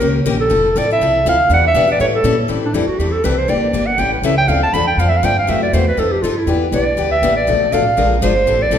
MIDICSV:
0, 0, Header, 1, 5, 480
1, 0, Start_track
1, 0, Key_signature, 0, "minor"
1, 0, Tempo, 248963
1, 972, Time_signature, 4, 2, 24, 8
1, 16936, End_track
2, 0, Start_track
2, 0, Title_t, "Clarinet"
2, 0, Program_c, 0, 71
2, 0, Note_on_c, 0, 70, 75
2, 283, Note_off_c, 0, 70, 0
2, 789, Note_on_c, 0, 69, 80
2, 1504, Note_on_c, 0, 74, 88
2, 1533, Note_off_c, 0, 69, 0
2, 1738, Note_off_c, 0, 74, 0
2, 1787, Note_on_c, 0, 76, 88
2, 2400, Note_off_c, 0, 76, 0
2, 2482, Note_on_c, 0, 77, 99
2, 2893, Note_off_c, 0, 77, 0
2, 2962, Note_on_c, 0, 78, 98
2, 3171, Note_off_c, 0, 78, 0
2, 3229, Note_on_c, 0, 76, 102
2, 3638, Note_off_c, 0, 76, 0
2, 3700, Note_on_c, 0, 74, 90
2, 3861, Note_off_c, 0, 74, 0
2, 3872, Note_on_c, 0, 73, 94
2, 3984, Note_off_c, 0, 73, 0
2, 4166, Note_on_c, 0, 69, 78
2, 4586, Note_off_c, 0, 69, 0
2, 5110, Note_on_c, 0, 62, 75
2, 5293, Note_on_c, 0, 64, 68
2, 5322, Note_off_c, 0, 62, 0
2, 5537, Note_on_c, 0, 66, 74
2, 5566, Note_off_c, 0, 64, 0
2, 5764, Note_on_c, 0, 67, 73
2, 5793, Note_off_c, 0, 66, 0
2, 6023, Note_on_c, 0, 69, 78
2, 6052, Note_off_c, 0, 67, 0
2, 6263, Note_on_c, 0, 71, 74
2, 6291, Note_off_c, 0, 69, 0
2, 6525, Note_on_c, 0, 72, 76
2, 6554, Note_off_c, 0, 71, 0
2, 6736, Note_on_c, 0, 74, 72
2, 6765, Note_off_c, 0, 72, 0
2, 7447, Note_on_c, 0, 78, 85
2, 7476, Note_off_c, 0, 74, 0
2, 7689, Note_on_c, 0, 79, 94
2, 7718, Note_off_c, 0, 78, 0
2, 7952, Note_off_c, 0, 79, 0
2, 7978, Note_on_c, 0, 71, 46
2, 8189, Note_on_c, 0, 76, 81
2, 8218, Note_off_c, 0, 71, 0
2, 8428, Note_off_c, 0, 76, 0
2, 8440, Note_on_c, 0, 79, 97
2, 8652, Note_on_c, 0, 77, 76
2, 8680, Note_off_c, 0, 79, 0
2, 8914, Note_off_c, 0, 77, 0
2, 8932, Note_on_c, 0, 81, 83
2, 9138, Note_on_c, 0, 83, 88
2, 9167, Note_off_c, 0, 81, 0
2, 9384, Note_off_c, 0, 83, 0
2, 9395, Note_on_c, 0, 79, 85
2, 9632, Note_on_c, 0, 77, 84
2, 9660, Note_off_c, 0, 79, 0
2, 9813, Note_on_c, 0, 76, 79
2, 9842, Note_off_c, 0, 77, 0
2, 9977, Note_on_c, 0, 77, 79
2, 10006, Note_off_c, 0, 76, 0
2, 10119, Note_on_c, 0, 79, 97
2, 10147, Note_off_c, 0, 77, 0
2, 10368, Note_off_c, 0, 79, 0
2, 10389, Note_on_c, 0, 77, 87
2, 10591, Note_on_c, 0, 76, 76
2, 10620, Note_off_c, 0, 77, 0
2, 10837, Note_off_c, 0, 76, 0
2, 10849, Note_on_c, 0, 74, 80
2, 11061, Note_on_c, 0, 72, 74
2, 11090, Note_off_c, 0, 74, 0
2, 11319, Note_off_c, 0, 72, 0
2, 11344, Note_on_c, 0, 71, 86
2, 11556, Note_on_c, 0, 69, 78
2, 11585, Note_off_c, 0, 71, 0
2, 11797, Note_on_c, 0, 67, 70
2, 11826, Note_off_c, 0, 69, 0
2, 11992, Note_on_c, 0, 65, 73
2, 12021, Note_off_c, 0, 67, 0
2, 12310, Note_on_c, 0, 64, 70
2, 12339, Note_off_c, 0, 65, 0
2, 12773, Note_off_c, 0, 64, 0
2, 12980, Note_on_c, 0, 74, 77
2, 13668, Note_off_c, 0, 74, 0
2, 13712, Note_on_c, 0, 76, 93
2, 14160, Note_off_c, 0, 76, 0
2, 14196, Note_on_c, 0, 74, 87
2, 14904, Note_on_c, 0, 77, 95
2, 14933, Note_off_c, 0, 74, 0
2, 15641, Note_off_c, 0, 77, 0
2, 15872, Note_on_c, 0, 72, 89
2, 16624, Note_on_c, 0, 74, 105
2, 16653, Note_off_c, 0, 72, 0
2, 16936, Note_off_c, 0, 74, 0
2, 16936, End_track
3, 0, Start_track
3, 0, Title_t, "Steel-string acoustic guitar"
3, 0, Program_c, 1, 25
3, 8, Note_on_c, 1, 51, 66
3, 18, Note_on_c, 1, 58, 67
3, 29, Note_on_c, 1, 61, 73
3, 35, Note_on_c, 1, 67, 80
3, 42, Note_on_c, 1, 70, 79
3, 353, Note_off_c, 1, 51, 0
3, 357, Note_off_c, 1, 58, 0
3, 363, Note_off_c, 1, 61, 0
3, 366, Note_off_c, 1, 67, 0
3, 370, Note_off_c, 1, 70, 0
3, 495, Note_on_c, 1, 51, 94
3, 495, Note_on_c, 1, 58, 91
3, 506, Note_on_c, 1, 67, 97
3, 509, Note_on_c, 1, 61, 97
3, 510, Note_on_c, 1, 70, 91
3, 683, Note_off_c, 1, 51, 0
3, 683, Note_off_c, 1, 58, 0
3, 688, Note_off_c, 1, 67, 0
3, 690, Note_off_c, 1, 61, 0
3, 691, Note_off_c, 1, 70, 0
3, 957, Note_on_c, 1, 53, 72
3, 963, Note_on_c, 1, 60, 69
3, 976, Note_on_c, 1, 69, 80
3, 982, Note_on_c, 1, 64, 75
3, 1306, Note_off_c, 1, 53, 0
3, 1309, Note_off_c, 1, 60, 0
3, 1316, Note_off_c, 1, 69, 0
3, 1319, Note_off_c, 1, 64, 0
3, 1461, Note_on_c, 1, 53, 76
3, 1478, Note_on_c, 1, 60, 84
3, 1487, Note_on_c, 1, 64, 79
3, 1499, Note_on_c, 1, 69, 101
3, 1645, Note_off_c, 1, 53, 0
3, 1654, Note_off_c, 1, 60, 0
3, 1658, Note_off_c, 1, 64, 0
3, 1665, Note_off_c, 1, 69, 0
3, 1745, Note_on_c, 1, 69, 54
3, 1762, Note_on_c, 1, 64, 54
3, 1787, Note_on_c, 1, 60, 47
3, 1937, Note_off_c, 1, 69, 0
3, 1942, Note_off_c, 1, 60, 0
3, 1946, Note_off_c, 1, 64, 0
3, 1953, Note_on_c, 1, 53, 73
3, 1965, Note_on_c, 1, 60, 69
3, 1979, Note_on_c, 1, 64, 70
3, 1983, Note_on_c, 1, 69, 78
3, 2284, Note_off_c, 1, 53, 0
3, 2289, Note_off_c, 1, 60, 0
3, 2296, Note_off_c, 1, 64, 0
3, 2298, Note_off_c, 1, 69, 0
3, 2432, Note_on_c, 1, 53, 95
3, 2443, Note_on_c, 1, 60, 89
3, 2446, Note_on_c, 1, 64, 92
3, 2460, Note_on_c, 1, 69, 86
3, 2610, Note_off_c, 1, 53, 0
3, 2615, Note_off_c, 1, 60, 0
3, 2617, Note_off_c, 1, 64, 0
3, 2624, Note_off_c, 1, 69, 0
3, 2886, Note_on_c, 1, 52, 73
3, 2899, Note_on_c, 1, 59, 75
3, 2910, Note_on_c, 1, 62, 75
3, 2911, Note_on_c, 1, 67, 72
3, 3229, Note_off_c, 1, 52, 0
3, 3236, Note_off_c, 1, 59, 0
3, 3241, Note_off_c, 1, 62, 0
3, 3242, Note_off_c, 1, 67, 0
3, 3364, Note_on_c, 1, 52, 87
3, 3372, Note_on_c, 1, 59, 89
3, 3388, Note_on_c, 1, 62, 90
3, 3399, Note_on_c, 1, 67, 91
3, 3556, Note_off_c, 1, 52, 0
3, 3560, Note_off_c, 1, 59, 0
3, 3568, Note_off_c, 1, 62, 0
3, 3573, Note_off_c, 1, 67, 0
3, 3616, Note_on_c, 1, 67, 61
3, 3642, Note_on_c, 1, 62, 53
3, 3663, Note_on_c, 1, 59, 49
3, 3832, Note_off_c, 1, 67, 0
3, 3844, Note_off_c, 1, 62, 0
3, 3851, Note_on_c, 1, 52, 65
3, 3853, Note_off_c, 1, 59, 0
3, 3860, Note_on_c, 1, 55, 68
3, 3860, Note_on_c, 1, 61, 67
3, 3867, Note_on_c, 1, 64, 72
3, 3869, Note_on_c, 1, 69, 76
3, 4192, Note_off_c, 1, 52, 0
3, 4196, Note_off_c, 1, 55, 0
3, 4196, Note_off_c, 1, 61, 0
3, 4200, Note_off_c, 1, 64, 0
3, 4201, Note_off_c, 1, 69, 0
3, 4317, Note_on_c, 1, 52, 86
3, 4326, Note_on_c, 1, 55, 87
3, 4335, Note_on_c, 1, 61, 97
3, 4336, Note_on_c, 1, 64, 97
3, 4343, Note_on_c, 1, 69, 95
3, 4512, Note_off_c, 1, 52, 0
3, 4517, Note_off_c, 1, 55, 0
3, 4521, Note_off_c, 1, 61, 0
3, 4522, Note_off_c, 1, 64, 0
3, 4525, Note_off_c, 1, 69, 0
3, 4785, Note_on_c, 1, 52, 61
3, 4795, Note_on_c, 1, 55, 60
3, 4800, Note_on_c, 1, 60, 70
3, 4806, Note_on_c, 1, 64, 72
3, 4820, Note_on_c, 1, 69, 71
3, 5139, Note_off_c, 1, 52, 0
3, 5144, Note_off_c, 1, 55, 0
3, 5147, Note_off_c, 1, 60, 0
3, 5150, Note_off_c, 1, 64, 0
3, 5157, Note_off_c, 1, 69, 0
3, 5284, Note_on_c, 1, 52, 77
3, 5290, Note_on_c, 1, 55, 84
3, 5296, Note_on_c, 1, 64, 82
3, 5302, Note_on_c, 1, 60, 79
3, 5310, Note_on_c, 1, 69, 75
3, 5476, Note_off_c, 1, 52, 0
3, 5479, Note_off_c, 1, 55, 0
3, 5482, Note_off_c, 1, 64, 0
3, 5485, Note_off_c, 1, 60, 0
3, 5489, Note_off_c, 1, 69, 0
3, 5778, Note_on_c, 1, 52, 67
3, 5784, Note_on_c, 1, 55, 62
3, 5796, Note_on_c, 1, 60, 65
3, 5801, Note_on_c, 1, 69, 71
3, 5804, Note_on_c, 1, 64, 65
3, 6116, Note_off_c, 1, 52, 0
3, 6119, Note_off_c, 1, 55, 0
3, 6125, Note_off_c, 1, 60, 0
3, 6127, Note_off_c, 1, 69, 0
3, 6129, Note_off_c, 1, 64, 0
3, 6243, Note_on_c, 1, 52, 83
3, 6247, Note_on_c, 1, 55, 87
3, 6264, Note_on_c, 1, 60, 96
3, 6266, Note_on_c, 1, 64, 91
3, 6267, Note_on_c, 1, 69, 94
3, 6436, Note_off_c, 1, 52, 0
3, 6438, Note_off_c, 1, 55, 0
3, 6446, Note_off_c, 1, 60, 0
3, 6447, Note_off_c, 1, 64, 0
3, 6448, Note_off_c, 1, 69, 0
3, 6710, Note_on_c, 1, 52, 61
3, 6727, Note_on_c, 1, 58, 69
3, 6732, Note_on_c, 1, 62, 75
3, 6735, Note_on_c, 1, 67, 69
3, 7063, Note_off_c, 1, 52, 0
3, 7071, Note_off_c, 1, 58, 0
3, 7073, Note_off_c, 1, 62, 0
3, 7075, Note_off_c, 1, 67, 0
3, 7197, Note_on_c, 1, 52, 69
3, 7212, Note_on_c, 1, 58, 81
3, 7214, Note_on_c, 1, 62, 79
3, 7232, Note_on_c, 1, 67, 89
3, 7393, Note_off_c, 1, 52, 0
3, 7401, Note_off_c, 1, 58, 0
3, 7402, Note_off_c, 1, 62, 0
3, 7411, Note_off_c, 1, 67, 0
3, 7671, Note_on_c, 1, 52, 68
3, 7673, Note_on_c, 1, 61, 69
3, 7675, Note_on_c, 1, 55, 69
3, 7694, Note_on_c, 1, 64, 76
3, 7702, Note_on_c, 1, 69, 68
3, 8024, Note_off_c, 1, 52, 0
3, 8025, Note_off_c, 1, 61, 0
3, 8026, Note_off_c, 1, 55, 0
3, 8035, Note_off_c, 1, 64, 0
3, 8039, Note_off_c, 1, 69, 0
3, 8161, Note_on_c, 1, 52, 81
3, 8165, Note_on_c, 1, 55, 93
3, 8177, Note_on_c, 1, 61, 96
3, 8189, Note_on_c, 1, 64, 85
3, 8190, Note_on_c, 1, 69, 95
3, 8356, Note_off_c, 1, 52, 0
3, 8358, Note_off_c, 1, 55, 0
3, 8364, Note_off_c, 1, 61, 0
3, 8370, Note_off_c, 1, 64, 0
3, 8371, Note_off_c, 1, 69, 0
3, 8642, Note_on_c, 1, 50, 67
3, 8651, Note_on_c, 1, 53, 65
3, 8656, Note_on_c, 1, 62, 76
3, 8657, Note_on_c, 1, 60, 73
3, 8665, Note_on_c, 1, 69, 74
3, 8990, Note_off_c, 1, 50, 0
3, 8994, Note_off_c, 1, 53, 0
3, 8997, Note_off_c, 1, 60, 0
3, 8997, Note_off_c, 1, 62, 0
3, 9001, Note_off_c, 1, 69, 0
3, 9132, Note_on_c, 1, 50, 78
3, 9150, Note_on_c, 1, 53, 85
3, 9150, Note_on_c, 1, 60, 78
3, 9152, Note_on_c, 1, 62, 85
3, 9161, Note_on_c, 1, 69, 87
3, 9322, Note_off_c, 1, 50, 0
3, 9331, Note_off_c, 1, 53, 0
3, 9331, Note_off_c, 1, 60, 0
3, 9332, Note_off_c, 1, 62, 0
3, 9337, Note_off_c, 1, 69, 0
3, 9623, Note_on_c, 1, 50, 73
3, 9631, Note_on_c, 1, 53, 76
3, 9634, Note_on_c, 1, 60, 71
3, 9640, Note_on_c, 1, 62, 69
3, 9658, Note_on_c, 1, 69, 73
3, 9961, Note_off_c, 1, 50, 0
3, 9965, Note_off_c, 1, 53, 0
3, 9966, Note_off_c, 1, 60, 0
3, 9969, Note_off_c, 1, 62, 0
3, 9979, Note_off_c, 1, 69, 0
3, 10083, Note_on_c, 1, 50, 90
3, 10085, Note_on_c, 1, 53, 88
3, 10099, Note_on_c, 1, 60, 92
3, 10108, Note_on_c, 1, 62, 94
3, 10116, Note_on_c, 1, 69, 87
3, 10278, Note_off_c, 1, 50, 0
3, 10279, Note_off_c, 1, 53, 0
3, 10286, Note_off_c, 1, 60, 0
3, 10290, Note_off_c, 1, 62, 0
3, 10295, Note_off_c, 1, 69, 0
3, 10553, Note_on_c, 1, 48, 73
3, 10567, Note_on_c, 1, 52, 71
3, 10572, Note_on_c, 1, 64, 72
3, 10574, Note_on_c, 1, 57, 76
3, 10581, Note_on_c, 1, 66, 80
3, 10906, Note_off_c, 1, 48, 0
3, 10913, Note_off_c, 1, 52, 0
3, 10916, Note_off_c, 1, 64, 0
3, 10917, Note_off_c, 1, 57, 0
3, 10920, Note_off_c, 1, 66, 0
3, 11055, Note_on_c, 1, 48, 85
3, 11062, Note_on_c, 1, 57, 86
3, 11071, Note_on_c, 1, 52, 76
3, 11072, Note_on_c, 1, 64, 89
3, 11073, Note_on_c, 1, 66, 85
3, 11244, Note_off_c, 1, 48, 0
3, 11248, Note_off_c, 1, 57, 0
3, 11253, Note_off_c, 1, 52, 0
3, 11253, Note_off_c, 1, 64, 0
3, 11254, Note_off_c, 1, 66, 0
3, 11516, Note_on_c, 1, 53, 67
3, 11531, Note_on_c, 1, 60, 63
3, 11543, Note_on_c, 1, 63, 71
3, 11543, Note_on_c, 1, 69, 74
3, 11868, Note_off_c, 1, 53, 0
3, 11875, Note_off_c, 1, 60, 0
3, 11881, Note_off_c, 1, 69, 0
3, 11882, Note_off_c, 1, 63, 0
3, 12022, Note_on_c, 1, 53, 80
3, 12026, Note_on_c, 1, 60, 83
3, 12036, Note_on_c, 1, 63, 85
3, 12049, Note_on_c, 1, 69, 91
3, 12208, Note_off_c, 1, 53, 0
3, 12210, Note_off_c, 1, 60, 0
3, 12215, Note_off_c, 1, 63, 0
3, 12222, Note_off_c, 1, 69, 0
3, 12475, Note_on_c, 1, 52, 67
3, 12482, Note_on_c, 1, 59, 68
3, 12490, Note_on_c, 1, 62, 72
3, 12507, Note_on_c, 1, 67, 81
3, 12827, Note_off_c, 1, 52, 0
3, 12831, Note_off_c, 1, 59, 0
3, 12835, Note_off_c, 1, 62, 0
3, 12844, Note_off_c, 1, 67, 0
3, 12964, Note_on_c, 1, 52, 80
3, 12974, Note_on_c, 1, 59, 80
3, 12983, Note_on_c, 1, 62, 86
3, 12984, Note_on_c, 1, 67, 89
3, 13159, Note_off_c, 1, 52, 0
3, 13165, Note_off_c, 1, 59, 0
3, 13169, Note_off_c, 1, 62, 0
3, 13169, Note_off_c, 1, 67, 0
3, 13436, Note_on_c, 1, 52, 70
3, 13449, Note_on_c, 1, 59, 63
3, 13453, Note_on_c, 1, 62, 74
3, 13468, Note_on_c, 1, 67, 80
3, 13788, Note_off_c, 1, 52, 0
3, 13795, Note_off_c, 1, 59, 0
3, 13797, Note_off_c, 1, 62, 0
3, 13804, Note_off_c, 1, 67, 0
3, 13938, Note_on_c, 1, 52, 89
3, 13938, Note_on_c, 1, 59, 88
3, 13955, Note_on_c, 1, 62, 99
3, 13963, Note_on_c, 1, 67, 100
3, 14126, Note_off_c, 1, 52, 0
3, 14126, Note_off_c, 1, 59, 0
3, 14135, Note_off_c, 1, 62, 0
3, 14139, Note_off_c, 1, 67, 0
3, 14404, Note_on_c, 1, 47, 65
3, 14413, Note_on_c, 1, 53, 63
3, 14417, Note_on_c, 1, 57, 80
3, 14433, Note_on_c, 1, 62, 74
3, 14436, Note_on_c, 1, 69, 72
3, 14752, Note_off_c, 1, 47, 0
3, 14757, Note_off_c, 1, 53, 0
3, 14759, Note_off_c, 1, 57, 0
3, 14767, Note_off_c, 1, 62, 0
3, 14769, Note_off_c, 1, 69, 0
3, 14891, Note_on_c, 1, 47, 81
3, 14902, Note_on_c, 1, 53, 78
3, 14905, Note_on_c, 1, 57, 85
3, 14918, Note_on_c, 1, 62, 86
3, 14921, Note_on_c, 1, 69, 96
3, 15083, Note_off_c, 1, 47, 0
3, 15089, Note_off_c, 1, 53, 0
3, 15090, Note_off_c, 1, 57, 0
3, 15097, Note_off_c, 1, 62, 0
3, 15098, Note_off_c, 1, 69, 0
3, 15368, Note_on_c, 1, 53, 75
3, 15378, Note_on_c, 1, 56, 68
3, 15380, Note_on_c, 1, 62, 67
3, 15390, Note_on_c, 1, 70, 82
3, 15394, Note_on_c, 1, 65, 67
3, 15714, Note_off_c, 1, 53, 0
3, 15719, Note_off_c, 1, 56, 0
3, 15720, Note_off_c, 1, 62, 0
3, 15725, Note_off_c, 1, 70, 0
3, 15727, Note_off_c, 1, 65, 0
3, 15849, Note_on_c, 1, 53, 87
3, 15852, Note_on_c, 1, 56, 97
3, 15859, Note_on_c, 1, 62, 93
3, 15869, Note_on_c, 1, 65, 103
3, 15882, Note_on_c, 1, 70, 101
3, 16042, Note_off_c, 1, 53, 0
3, 16043, Note_off_c, 1, 56, 0
3, 16047, Note_off_c, 1, 62, 0
3, 16052, Note_off_c, 1, 65, 0
3, 16059, Note_off_c, 1, 70, 0
3, 16330, Note_on_c, 1, 52, 72
3, 16334, Note_on_c, 1, 55, 78
3, 16342, Note_on_c, 1, 60, 79
3, 16349, Note_on_c, 1, 64, 77
3, 16356, Note_on_c, 1, 69, 72
3, 16675, Note_off_c, 1, 52, 0
3, 16677, Note_off_c, 1, 55, 0
3, 16681, Note_off_c, 1, 60, 0
3, 16685, Note_off_c, 1, 64, 0
3, 16688, Note_off_c, 1, 69, 0
3, 16797, Note_on_c, 1, 52, 81
3, 16808, Note_on_c, 1, 55, 89
3, 16812, Note_on_c, 1, 60, 87
3, 16824, Note_on_c, 1, 69, 91
3, 16828, Note_on_c, 1, 64, 84
3, 16936, Note_off_c, 1, 52, 0
3, 16936, Note_off_c, 1, 55, 0
3, 16936, Note_off_c, 1, 60, 0
3, 16936, Note_off_c, 1, 64, 0
3, 16936, Note_off_c, 1, 69, 0
3, 16936, End_track
4, 0, Start_track
4, 0, Title_t, "Upright bass"
4, 0, Program_c, 2, 32
4, 0, Note_on_c, 2, 37, 83
4, 467, Note_off_c, 2, 37, 0
4, 480, Note_on_c, 2, 34, 86
4, 950, Note_off_c, 2, 34, 0
4, 984, Note_on_c, 2, 29, 86
4, 1442, Note_off_c, 2, 29, 0
4, 1455, Note_on_c, 2, 33, 89
4, 1917, Note_off_c, 2, 33, 0
4, 1934, Note_on_c, 2, 36, 84
4, 2396, Note_off_c, 2, 36, 0
4, 2413, Note_on_c, 2, 38, 83
4, 2875, Note_off_c, 2, 38, 0
4, 2884, Note_on_c, 2, 40, 87
4, 3351, Note_off_c, 2, 40, 0
4, 3361, Note_on_c, 2, 47, 89
4, 3829, Note_off_c, 2, 47, 0
4, 3852, Note_on_c, 2, 45, 80
4, 4306, Note_off_c, 2, 45, 0
4, 4317, Note_on_c, 2, 46, 86
4, 4788, Note_off_c, 2, 46, 0
4, 4800, Note_on_c, 2, 45, 79
4, 5263, Note_off_c, 2, 45, 0
4, 5275, Note_on_c, 2, 41, 81
4, 5524, Note_off_c, 2, 41, 0
4, 5764, Note_on_c, 2, 40, 73
4, 6232, Note_off_c, 2, 40, 0
4, 6249, Note_on_c, 2, 36, 85
4, 6709, Note_off_c, 2, 36, 0
4, 6721, Note_on_c, 2, 28, 85
4, 6968, Note_off_c, 2, 28, 0
4, 7199, Note_on_c, 2, 31, 81
4, 7659, Note_off_c, 2, 31, 0
4, 7671, Note_on_c, 2, 33, 79
4, 8122, Note_off_c, 2, 33, 0
4, 8134, Note_on_c, 2, 37, 83
4, 8618, Note_off_c, 2, 37, 0
4, 8634, Note_on_c, 2, 38, 84
4, 9108, Note_off_c, 2, 38, 0
4, 9118, Note_on_c, 2, 40, 87
4, 9572, Note_off_c, 2, 40, 0
4, 9584, Note_on_c, 2, 41, 77
4, 10063, Note_off_c, 2, 41, 0
4, 10088, Note_on_c, 2, 43, 87
4, 10556, Note_off_c, 2, 43, 0
4, 10582, Note_on_c, 2, 42, 84
4, 11036, Note_off_c, 2, 42, 0
4, 11048, Note_on_c, 2, 40, 84
4, 11509, Note_off_c, 2, 40, 0
4, 11521, Note_on_c, 2, 41, 80
4, 11993, Note_off_c, 2, 41, 0
4, 12003, Note_on_c, 2, 43, 87
4, 12451, Note_off_c, 2, 43, 0
4, 12463, Note_on_c, 2, 40, 78
4, 12944, Note_off_c, 2, 40, 0
4, 12954, Note_on_c, 2, 35, 87
4, 13429, Note_off_c, 2, 35, 0
4, 13453, Note_on_c, 2, 38, 77
4, 13911, Note_off_c, 2, 38, 0
4, 13923, Note_on_c, 2, 33, 92
4, 14394, Note_off_c, 2, 33, 0
4, 14411, Note_on_c, 2, 35, 85
4, 14656, Note_off_c, 2, 35, 0
4, 14895, Note_on_c, 2, 33, 88
4, 15360, Note_off_c, 2, 33, 0
4, 15382, Note_on_c, 2, 34, 78
4, 15830, Note_off_c, 2, 34, 0
4, 15842, Note_on_c, 2, 31, 86
4, 16313, Note_off_c, 2, 31, 0
4, 16328, Note_on_c, 2, 33, 85
4, 16774, Note_off_c, 2, 33, 0
4, 16786, Note_on_c, 2, 35, 84
4, 16936, Note_off_c, 2, 35, 0
4, 16936, End_track
5, 0, Start_track
5, 0, Title_t, "Muted upright bass strokes"
5, 5544, Note_on_c, 9, 29, 38
5, 5737, Note_off_c, 9, 29, 0
5, 6986, Note_on_c, 9, 29, 38
5, 7179, Note_off_c, 9, 29, 0
5, 14682, Note_on_c, 9, 29, 37
5, 14875, Note_off_c, 9, 29, 0
5, 16936, End_track
0, 0, End_of_file